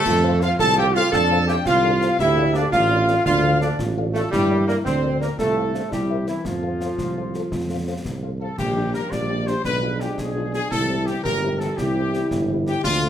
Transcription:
Already playing: trombone section A3, trumpet section A4, woodwind section A4
0.06 tuba F2, euphonium F4, concert bass drum, snare, crash
0.23 french horn section A4 C5 F5
0.41 trombone section F4, french horn section A4 C5 F5, trumpet section F5, woodwind section F5, snare
0.59 tuba C2, trombone section A4, trumpet section A5, woodwind section A5, concert bass drum, snare
0.78 trombone section G4, french horn section A4 C5 F5, trumpet section G5, woodwind section G5
0.95 trombone section F4, french horn section A4 C5 F5, trumpet section F5, woodwind section F5, snare
1.12 tuba F2, euphonium D4, trombone section A4, trumpet section A5, woodwind section A5, concert bass drum, snare
1.32 french horn section A4 C5 F5
1.48 trombone section G4, french horn section A4 C5 F5, trumpet section G5, woodwind section G5, snare
1.66 tuba C2, euphonium C4, trombone section F4, trumpet section F5, woodwind section F5, concert bass drum, snare
1.84 euphonium D4, french horn section A4 C5 F5
2.01 euphonium C4, french horn section A4 C5 F5, snare
2.19 tuba D2, trombone section E4, euphonium G4, trumpet section E5, woodwind section E5, concert bass drum, snare
2.38 french horn section A4 D5 F5
2.54 trombone section D4, french horn section A4 D5 F5, trumpet section D5, woodwind section D5, snare
2.72 tuba A1, trombone section F4, euphonium F4, trumpet section F5, woodwind section F5, concert bass drum, snare
2.90 euphonium D4, french horn section A4 D5 F5
3.07 euphonium C4, french horn section A4 D5 F5, snare
3.26 tuba D2, euphonium D4, trombone section F4, trumpet section F5, woodwind section F5, concert bass drum, snare
3.43 french horn section A4 D5 F5
3.61 trombone section D4, french horn section A4 D5 F5, trumpet section D5, woodwind section D5, snare
3.79 tuba A1, euphonium F4, concert bass drum, snare
3.97 french horn section A4 D5 F5
4.14 trombone section A3, trumpet section A4, woodwind section A4, french horn section A4 D5 F5, snare
4.31 tuba G2, trombone section G3, euphonium E4, trumpet section G4, woodwind section G4, concert bass drum, snare, crash
4.51 french horn section A#4 D5
4.68 trombone section A#3, french horn section A#4 D5, woodwind section A#4, trumpet section A#4, snare
4.84 tuba D2, trombone section C4, euphonium D4, woodwind section C5, trumpet section C5, concert bass drum, snare
5.03 french horn section A#4 D5
5.20 trombone section A#3, french horn section A#4 D5, trumpet section A#4, woodwind section A#4, snare
5.38 tuba C2, trombone section A3, euphonium F4, woodwind section A4, trumpet section A4, concert bass drum, snare
5.56 euphonium E4, french horn section A4 C5 F5
5.74 euphonium D4, french horn section A4 C5 F5, snare
5.91 tuba C2, trombone section G3, euphonium E4, trumpet section G4, woodwind section G4, concert bass drum, snare
6.11 french horn section A#4 C5 E5
6.27 trombone section E3, trumpet section E4, woodwind section E4, french horn section A#4 C5 E5, snare
6.45 tuba F2, trombone section F3, euphonium F4, trumpet section F4, woodwind section F4, concert bass drum, snare
6.63 french horn section A4 C5 F5
6.81 french horn section A4 C5 F5, snare
6.98 tuba C2, concert bass drum, snare
7.16 french horn section A4 C5 F5
7.34 french horn section A4 C5 F5, snare
7.52 tuba F2, concert bass drum, snare
7.70 french horn section A4 C5 F5
7.88 french horn section A4 C5 F5
8.05 tuba C2, concert bass drum, snare
8.23 french horn section A4 C5 F5
8.40 trumpet section A4, french horn section A4 C5 F5, woodwind section A4
8.58 tuba A#1, trombone section G3 A#3, trumpet section G4, woodwind section G4, concert bass drum, snare, crash
8.76 french horn section D4 G4
8.94 french horn section D4 G4, trumpet section A#4, woodwind section A#4, snare
9.12 tuba A#1, euphonium G4, trumpet section D5, woodwind section D5, concert bass drum, snare
9.29 french horn section D4 G4
9.47 french horn section D4 G4, trumpet section C5, woodwind section C5, snare
9.64 tuba B1, trombone section F3 G#3, euphonium D4, trumpet section B4, woodwind section B4, concert bass drum, snare
9.82 french horn section D4 F4 G#4
10.00 french horn section D4 F4 G#4, trumpet section G4, woodwind section G4, snare
10.18 tuba B1, woodwind section G#4, trumpet section G#4, concert bass drum, snare
10.36 french horn section D4 F4 G#4
10.53 french horn section D4 F4 G#4, trumpet section G#4, woodwind section G#4, snare
10.71 tuba C2, trombone section E3 G3, euphonium E4, trumpet section A4, woodwind section A4, concert bass drum, snare
10.89 french horn section C4 E4 G4
11.06 french horn section C4 E4 G4, trumpet section G4, woodwind section G4, snare
11.24 tuba G1, euphonium G4, trumpet section A#4, woodwind section A#4, concert bass drum, snare
11.42 french horn section C4 E4 G4
11.59 french horn section C4 E4 G4, trumpet section A4, woodwind section A4, snare
11.77 tuba C2, euphonium E4, trumpet section G4, woodwind section G4, concert bass drum, snare
11.95 french horn section C4 E4 G4
12.13 french horn section C4 E4 G4, snare
12.31 tuba G1, concert bass drum, snare
12.49 french horn section C4 E4 G4
12.67 french horn section C4 E4 G4, trumpet section G4, woodwind section G4, snare
12.83 tuba D2, trombone section F3 A3, euphonium D4, trumpet section F4, woodwind section F4, concert bass drum, snare, crash
13.03 french horn section A3 D4

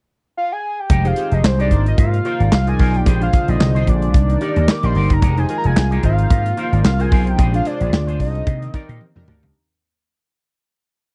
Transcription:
0.37 analog synth lead F5
0.52 analog synth lead G#5
0.80 analog synth lead G5
0.89 slap bass F1, analog synth pad D#3 G#3 G5, clean electric guitar G#3 D#4 G4, kick, closed hi-hat
1.04 analog polysynth D#4 G4 G#4 C5, analog synth lead F5, muted clean electric guitar stroke, closed hi-hat
1.16 analog polysynth D#4 G4 G#4 C5, muted clean electric guitar stroke, closed hi-hat
1.31 slap bass F1, clean electric guitar G#3 D#4 G#4, analog synth lead D#5, closed hi-hat
1.44 slap bass C2, analog synth lead C5, muted clean electric guitar stroke, snare, clap
1.59 clean electric guitar G#3 D#4 G4, analog synth lead D5, closed hi-hat
1.71 slap bass G#1, analog synth pad C3 A#3 F4, analog polysynth D#4 F4 A#4 C5, muted clean electric guitar stroke, kick, closed hi-hat
1.86 analog synth lead D#5, muted clean electric guitar stroke, closed hi-hat
1.98 slap bass G#2, analog synth lead F5, muted clean electric guitar stroke, kick, closed hi-hat
2.13 muted clean electric guitar stroke, closed hi-hat
2.25 analog polysynth D#4 F4 A#4 C5, clean electric guitar F4 A#4 C5, closed hi-hat
2.40 slap bass G#1, clean electric guitar F4 A#4 D5, closed hi-hat
2.52 slap bass C2, analog synth lead F5, snare, clap
2.67 analog polysynth D#4 F4 A#4 D5, analog synth lead G#5, muted clean electric guitar stroke, closed hi-hat
2.79 slap bass B1, clean electric guitar F4 A#4 C5, kick, open hi-hat
2.94 analog synth lead G5, muted clean electric guitar stroke, closed hi-hat
3.06 slap bass A#1, analog synth pad C3 D3 G#3, clean electric guitar D4 G#4 C5, kick, closed hi-hat
3.21 analog polysynth D4 F4 G#4 C5, analog synth lead F5, muted clean electric guitar stroke, closed hi-hat
3.33 analog polysynth D3 F4 G#4 C5, muted clean electric guitar stroke, kick, closed hi-hat
3.48 slap bass A#1, clean electric guitar D4 G#4 D5, analog synth lead D#5, closed hi-hat
3.60 slap bass C2, muted clean electric guitar stroke, snare, clap
3.75 clean electric guitar D4 G#4 C5, closed hi-hat
3.87 slap bass A#1, analog synth lead D5, muted clean electric guitar stroke, kick, closed hi-hat
4.02 muted clean electric guitar stroke, closed hi-hat
4.14 slap bass C2, analog synth pad D#3 A#3 D#4, muted clean electric guitar stroke, kick, closed hi-hat
4.30 muted clean electric guitar stroke, closed hi-hat
4.41 analog polysynth D#4 G4 A#4 D5, clean electric guitar D#4 A#4 D5, closed hi-hat
4.56 slap bass D#2, clean electric guitar D#4 A#4 D#5, closed hi-hat
4.68 analog synth lead D6, snare, clap
4.83 slap bass A#1, analog polysynth D#4 G4 A#4 D5, analog synth lead C6, muted clean electric guitar stroke, closed hi-hat
4.95 slap bass G1, clean electric guitar D#4 A#4 D5, open hi-hat
5.10 slap bass F#1, analog synth lead A#5, muted clean electric guitar stroke, kick, closed hi-hat
5.22 slap bass F1, analog synth pad D#3 G#3 G#4, clean electric guitar G#3 D#4 G4, kick, closed hi-hat
5.37 analog polysynth D#4 G4 G#4 C5, analog synth lead G#5, muted clean electric guitar stroke, closed hi-hat
5.49 analog polysynth D#4 F4 G#4 A#4, muted clean electric guitar stroke, closed hi-hat
5.58 analog synth lead A#5
5.64 slap bass F1, clean electric guitar G#3 D#4 G#4, analog synth lead G#5, closed hi-hat
5.76 slap bass C2, muted clean electric guitar stroke, snare, clap
5.91 clean electric guitar G#3 D#4 G4, closed hi-hat
6.03 slap bass G#1, analog synth pad C3 A#3 F4, analog polysynth D#4 F4 A#4 C5, analog synth lead F5, muted clean electric guitar stroke, kick, closed hi-hat
6.18 muted clean electric guitar stroke, closed hi-hat
6.30 slap bass G#2, muted clean electric guitar stroke, kick, closed hi-hat
6.45 muted clean electric guitar stroke, closed hi-hat
6.57 analog polysynth D#4 F4 A#4 C5, clean electric guitar F4 A#4 C5, closed hi-hat
6.72 slap bass G#1, clean electric guitar F4 A#4 D5, closed hi-hat
6.84 slap bass C2, analog synth lead F5, muted clean electric guitar stroke, snare, clap
6.99 analog polysynth D#4 F4 A#4 C5, clean electric guitar F4 A#4 C5, analog synth lead G#5, closed hi-hat
7.11 slap bass B1, clean electric guitar F4 A#4 C5, kick, open hi-hat
7.26 analog synth lead G5, muted clean electric guitar stroke, closed hi-hat
7.38 slap bass A#1, analog synth pad G#3 D4, clean electric guitar D4 G#4 C5, kick, closed hi-hat
7.53 analog polysynth D4 F4 G#4 C5, analog synth lead F5, muted clean electric guitar stroke, closed hi-hat
7.65 analog polysynth D4 F4 G#4 C5, analog synth lead D5, muted clean electric guitar stroke, closed hi-hat
7.80 slap bass A#1, clean electric guitar D4 G#4 D5, closed hi-hat
7.92 slap bass D2, muted clean electric guitar stroke, snare, clap
8.07 clean electric guitar D4 G#4 C5, closed hi-hat
8.20 slap bass C2, analog synth lead D#5, muted clean electric guitar stroke, kick, open hi-hat
8.35 muted clean electric guitar stroke, closed hi-hat
8.47 slap bass C3, analog synth pad D#3 A#3 C4, muted clean electric guitar stroke, kick, closed hi-hat
8.62 muted clean electric guitar stroke, closed hi-hat
8.73 analog polysynth C4 D#4 G4 A#4, clean electric guitar D#4 A#4 D5, kick, closed hi-hat
8.89 slap bass A#2, clean electric guitar D#4 A#4 D#5, closed hi-hat
9.01 high tom
9.15 slap bass F2, analog polysynth D4 D#4 G4 A#4, muted clean electric guitar stroke, mid tom
9.27 slap bass D2, clean electric guitar D#4 A#4 D5, mid tom
9.43 slap bass C#2, muted clean electric guitar stroke, floor tom

